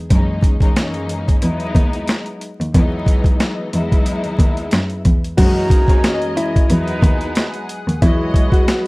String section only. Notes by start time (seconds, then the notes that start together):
0.11 F#2 E3 G#3 A#3 C#4 D#4
0.60 F#2 E3 G#3 A#3 C#4 D#4
0.76 F#2 E3 G#3 A#3 C#4 D#4
1.40 F#3 G#3 B3 D#4 E4
2.75 E3 F#3 G#3 B3 D#4
3.73 F#3 G#3 B3 D#4 E4
5.38 F#2 E3 G#3 A#3 C#4 D#4
5.87 F#2 E3 G#3 A#3 C#4 D#4
6.03 F#2 E3 G#3 A#3 C#4 D#5
6.67 F#3 G#3 B3 D#4 E4
8.02 E3 F#3 G#3 B3 D#5